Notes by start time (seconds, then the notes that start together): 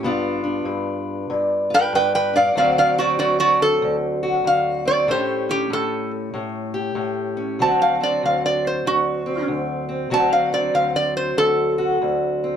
0.03 G2 B3 D4 F4
0.44 D4
0.65 G2
1.30 G2
1.70 F4
1.74 B4 G5
1.93 G2 B4 G5
2.15 B4 G5
2.33 D4 D5 F5
2.55 D2 F#3 C4 F#4 D5 F5
2.78 D5 F5
2.98 C4 F#4 D5
3.19 D2 F#4 D5
3.40 F#4 D5
3.62 A4
3.82 D2
4.23 F#4
4.44 D2 F5
4.85 C4 D5
5.07 A2 A3 C#4 G4 C5
5.49 C#4 G4
5.70 A2 A4
6.34 A2
6.74 G4
6.95 A2
7.37 C#4
7.59 D2 F#3 C4 F#4 A5
7.82 F5
8.00 C4 D5
8.23 D2 F5
8.46 D5
8.67 C5
8.86 D2 F#4
9.26 C4
9.48 D2
9.89 C4
10.10 D2 F#3 C4 F#4 A5
10.33 F5
10.53 C4 D5
10.74 D2 F5
10.96 D5
11.17 C5
11.37 D2 A4
11.78 F#4
12.02 D2
12.44 C4